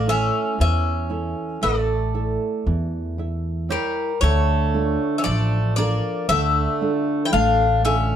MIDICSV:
0, 0, Header, 1, 5, 480
1, 0, Start_track
1, 0, Key_signature, -1, "minor"
1, 0, Tempo, 1034483
1, 1960, Time_signature, 9, 3, 24, 8
1, 3786, End_track
2, 0, Start_track
2, 0, Title_t, "Bouzouki"
2, 0, Program_c, 0, 25
2, 42, Note_on_c, 0, 76, 92
2, 279, Note_off_c, 0, 76, 0
2, 285, Note_on_c, 0, 76, 96
2, 744, Note_off_c, 0, 76, 0
2, 755, Note_on_c, 0, 74, 86
2, 1699, Note_off_c, 0, 74, 0
2, 1726, Note_on_c, 0, 70, 78
2, 1946, Note_off_c, 0, 70, 0
2, 1953, Note_on_c, 0, 73, 94
2, 2386, Note_off_c, 0, 73, 0
2, 2404, Note_on_c, 0, 76, 69
2, 2428, Note_off_c, 0, 76, 0
2, 2430, Note_on_c, 0, 74, 104
2, 2668, Note_off_c, 0, 74, 0
2, 2673, Note_on_c, 0, 74, 88
2, 2916, Note_off_c, 0, 74, 0
2, 2918, Note_on_c, 0, 76, 112
2, 3349, Note_off_c, 0, 76, 0
2, 3366, Note_on_c, 0, 79, 79
2, 3398, Note_off_c, 0, 79, 0
2, 3400, Note_on_c, 0, 77, 94
2, 3624, Note_off_c, 0, 77, 0
2, 3643, Note_on_c, 0, 76, 95
2, 3786, Note_off_c, 0, 76, 0
2, 3786, End_track
3, 0, Start_track
3, 0, Title_t, "Nylon-string guitar"
3, 0, Program_c, 1, 24
3, 0, Note_on_c, 1, 57, 72
3, 32, Note_on_c, 1, 69, 43
3, 34, Note_on_c, 1, 64, 49
3, 37, Note_on_c, 1, 73, 51
3, 262, Note_off_c, 1, 57, 0
3, 272, Note_on_c, 1, 52, 62
3, 419, Note_off_c, 1, 69, 0
3, 420, Note_off_c, 1, 64, 0
3, 422, Note_off_c, 1, 73, 0
3, 508, Note_on_c, 1, 64, 51
3, 510, Note_on_c, 1, 69, 47
3, 513, Note_on_c, 1, 76, 54
3, 741, Note_off_c, 1, 52, 0
3, 749, Note_on_c, 1, 57, 69
3, 897, Note_off_c, 1, 64, 0
3, 897, Note_off_c, 1, 69, 0
3, 898, Note_off_c, 1, 76, 0
3, 994, Note_on_c, 1, 64, 47
3, 996, Note_on_c, 1, 69, 47
3, 997, Note_on_c, 1, 76, 59
3, 1220, Note_off_c, 1, 57, 0
3, 1237, Note_on_c, 1, 52, 69
3, 1381, Note_off_c, 1, 64, 0
3, 1381, Note_off_c, 1, 69, 0
3, 1382, Note_off_c, 1, 76, 0
3, 1476, Note_on_c, 1, 64, 47
3, 1482, Note_on_c, 1, 76, 52
3, 1704, Note_off_c, 1, 52, 0
3, 1706, Note_off_c, 1, 64, 0
3, 1712, Note_on_c, 1, 64, 46
3, 1716, Note_on_c, 1, 73, 52
3, 1865, Note_off_c, 1, 76, 0
3, 1907, Note_off_c, 1, 64, 0
3, 1909, Note_off_c, 1, 73, 0
3, 1961, Note_on_c, 1, 50, 66
3, 2200, Note_on_c, 1, 62, 47
3, 2201, Note_on_c, 1, 65, 47
3, 2202, Note_on_c, 1, 69, 58
3, 2427, Note_off_c, 1, 50, 0
3, 2430, Note_on_c, 1, 53, 65
3, 2584, Note_off_c, 1, 62, 0
3, 2584, Note_off_c, 1, 65, 0
3, 2586, Note_off_c, 1, 69, 0
3, 2680, Note_on_c, 1, 62, 52
3, 2684, Note_on_c, 1, 65, 50
3, 2684, Note_on_c, 1, 69, 52
3, 2901, Note_off_c, 1, 53, 0
3, 2920, Note_on_c, 1, 50, 72
3, 3065, Note_off_c, 1, 62, 0
3, 3066, Note_off_c, 1, 65, 0
3, 3067, Note_off_c, 1, 69, 0
3, 3161, Note_on_c, 1, 62, 54
3, 3163, Note_on_c, 1, 65, 47
3, 3165, Note_on_c, 1, 69, 54
3, 3386, Note_off_c, 1, 50, 0
3, 3397, Note_on_c, 1, 57, 69
3, 3545, Note_off_c, 1, 62, 0
3, 3546, Note_off_c, 1, 65, 0
3, 3548, Note_off_c, 1, 69, 0
3, 3643, Note_on_c, 1, 50, 47
3, 3645, Note_on_c, 1, 65, 44
3, 3646, Note_on_c, 1, 69, 57
3, 3786, Note_off_c, 1, 50, 0
3, 3786, Note_off_c, 1, 57, 0
3, 3786, Note_off_c, 1, 65, 0
3, 3786, Note_off_c, 1, 69, 0
3, 3786, End_track
4, 0, Start_track
4, 0, Title_t, "Bouzouki"
4, 0, Program_c, 2, 25
4, 47, Note_on_c, 2, 61, 82
4, 267, Note_off_c, 2, 61, 0
4, 283, Note_on_c, 2, 61, 73
4, 743, Note_off_c, 2, 61, 0
4, 759, Note_on_c, 2, 57, 71
4, 1701, Note_off_c, 2, 57, 0
4, 1719, Note_on_c, 2, 55, 77
4, 1943, Note_off_c, 2, 55, 0
4, 1966, Note_on_c, 2, 57, 90
4, 2392, Note_off_c, 2, 57, 0
4, 2409, Note_on_c, 2, 61, 61
4, 2435, Note_off_c, 2, 61, 0
4, 2437, Note_on_c, 2, 57, 76
4, 2662, Note_off_c, 2, 57, 0
4, 2683, Note_on_c, 2, 58, 76
4, 2905, Note_off_c, 2, 58, 0
4, 2923, Note_on_c, 2, 57, 87
4, 3351, Note_off_c, 2, 57, 0
4, 3368, Note_on_c, 2, 64, 66
4, 3398, Note_off_c, 2, 64, 0
4, 3406, Note_on_c, 2, 62, 85
4, 3627, Note_off_c, 2, 62, 0
4, 3641, Note_on_c, 2, 61, 80
4, 3786, Note_off_c, 2, 61, 0
4, 3786, End_track
5, 0, Start_track
5, 0, Title_t, "Upright bass"
5, 0, Program_c, 3, 32
5, 0, Note_on_c, 3, 33, 84
5, 132, Note_off_c, 3, 33, 0
5, 279, Note_on_c, 3, 40, 98
5, 615, Note_off_c, 3, 40, 0
5, 759, Note_on_c, 3, 33, 86
5, 1096, Note_off_c, 3, 33, 0
5, 1237, Note_on_c, 3, 40, 100
5, 1742, Note_off_c, 3, 40, 0
5, 1959, Note_on_c, 3, 38, 97
5, 2296, Note_off_c, 3, 38, 0
5, 2441, Note_on_c, 3, 33, 90
5, 2777, Note_off_c, 3, 33, 0
5, 2917, Note_on_c, 3, 38, 86
5, 3087, Note_off_c, 3, 38, 0
5, 3401, Note_on_c, 3, 33, 94
5, 3786, Note_off_c, 3, 33, 0
5, 3786, End_track
0, 0, End_of_file